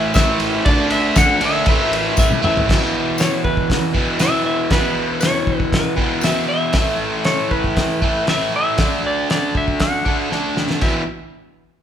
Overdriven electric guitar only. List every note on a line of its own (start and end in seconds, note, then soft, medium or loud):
0.00 0.14 A2 medium
0.00 0.14 E3 medium
0.00 0.13 A3 medium
0.15 0.64 A2 medium
0.15 0.64 E3 medium
0.15 0.65 A3 medium
0.66 1.40 D3 loud
0.66 1.41 A3 loud
0.66 1.41 D4 loud
1.42 1.66 D3 medium
1.42 1.66 A3 medium
1.42 1.65 D4 medium
1.67 2.41 A2 medium
1.67 2.42 E3 medium
1.67 2.41 A3 loud
2.42 2.67 E3 medium
2.42 2.66 A3 medium
2.46 2.68 A2 medium
2.66 3.92 E2 medium
2.66 3.93 B2 medium
2.66 3.94 E3 loud
3.94 4.19 B2 medium
3.94 4.23 E3 medium
3.98 4.18 E2 medium
4.19 4.68 E2 medium
4.19 4.69 B2 medium
4.19 4.73 E3 medium
4.70 5.96 E2 medium
4.70 5.97 B2 medium
4.70 5.95 E3 medium
5.97 6.21 E2 medium
5.97 6.22 B2 medium
5.97 6.21 E3 medium
6.23 6.72 E2 medium
6.23 6.72 B2 medium
6.23 6.73 E3 medium
6.73 7.99 A2 medium
6.73 8.00 E3 loud
6.77 8.01 A3 medium
8.02 8.26 A2 medium
8.02 8.27 E3 medium
8.02 8.25 A3 medium
8.27 8.76 A2 medium
8.27 8.77 E3 medium
8.31 8.78 A3 medium
8.78 10.04 D3 medium
8.78 10.05 A3 medium
8.78 10.04 D4 loud
10.05 10.30 A3 medium
10.05 10.29 D4 medium
10.10 10.29 D3 medium
10.30 10.80 D3 medium
10.30 10.81 A3 medium
10.34 10.82 D4 medium
10.81 11.02 E2 medium
10.81 11.02 B2 medium
10.81 11.03 E3 medium